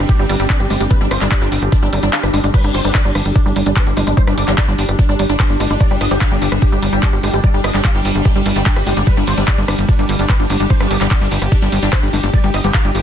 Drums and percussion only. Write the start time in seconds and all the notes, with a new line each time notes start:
0.09 kick, closed hi-hat
0.29 open hi-hat
0.40 closed hi-hat
0.50 kick, clap, closed hi-hat
0.60 cross-stick
0.70 open hi-hat
0.81 closed hi-hat
0.91 kick, closed hi-hat
1.11 cross-stick, open hi-hat
1.21 clap, closed hi-hat
1.31 kick, clap, closed hi-hat
1.52 open hi-hat
1.62 closed hi-hat
1.72 kick, cross-stick, closed hi-hat
1.93 open hi-hat
2.03 closed hi-hat
2.13 clap, closed hi-hat
2.23 cross-stick
2.34 open hi-hat
2.44 closed hi-hat
2.54 kick, closed hi-hat, crash
2.64 cross-stick
2.74 open hi-hat
2.85 closed hi-hat
2.95 kick, clap, closed hi-hat
3.15 cross-stick, open hi-hat
3.25 closed hi-hat
3.36 kick, closed hi-hat
3.56 open hi-hat
3.66 closed hi-hat
3.76 kick, cross-stick, clap, closed hi-hat
3.97 open hi-hat
4.07 closed hi-hat
4.17 kick, closed hi-hat
4.27 cross-stick
4.38 open hi-hat
4.48 clap, closed hi-hat
4.58 kick, clap, closed hi-hat
4.78 open hi-hat
4.89 cross-stick, closed hi-hat
4.99 kick, closed hi-hat
5.19 open hi-hat
5.30 closed hi-hat
5.40 kick, cross-stick, clap, closed hi-hat
5.60 open hi-hat
5.70 closed hi-hat
5.80 kick, closed hi-hat
6.01 cross-stick, open hi-hat
6.11 closed hi-hat
6.21 kick, clap, closed hi-hat
6.42 open hi-hat
6.52 cross-stick, closed hi-hat
6.62 kick, closed hi-hat
6.83 open hi-hat
6.93 closed hi-hat
7.03 kick, clap, closed hi-hat
7.13 cross-stick
7.23 open hi-hat
7.34 closed hi-hat
7.44 kick, closed hi-hat
7.64 cross-stick, open hi-hat
7.74 clap, closed hi-hat
7.85 kick, clap, closed hi-hat
8.05 open hi-hat
8.15 closed hi-hat
8.25 kick, cross-stick, closed hi-hat
8.46 open hi-hat
8.56 closed hi-hat
8.66 kick, clap, closed hi-hat
8.76 cross-stick
8.87 open hi-hat
8.97 closed hi-hat
9.07 kick, closed hi-hat, ride
9.17 cross-stick
9.27 open hi-hat
9.38 closed hi-hat
9.48 kick, clap, closed hi-hat, ride
9.68 cross-stick, open hi-hat
9.78 closed hi-hat
9.89 kick, closed hi-hat, ride
10.09 open hi-hat
10.19 closed hi-hat
10.29 kick, cross-stick, clap, closed hi-hat, ride
10.50 open hi-hat
10.60 closed hi-hat
10.70 kick, closed hi-hat, ride
10.80 cross-stick
10.91 open hi-hat
11.01 clap, closed hi-hat
11.11 kick, clap, closed hi-hat, ride
11.32 open hi-hat
11.42 cross-stick, closed hi-hat
11.52 kick, closed hi-hat, ride
11.72 open hi-hat
11.83 closed hi-hat
11.93 kick, cross-stick, clap, closed hi-hat, ride
12.13 open hi-hat
12.23 closed hi-hat
12.34 kick, closed hi-hat, ride
12.54 cross-stick, open hi-hat
12.64 closed hi-hat
12.74 kick, clap, closed hi-hat, ride
12.95 open hi-hat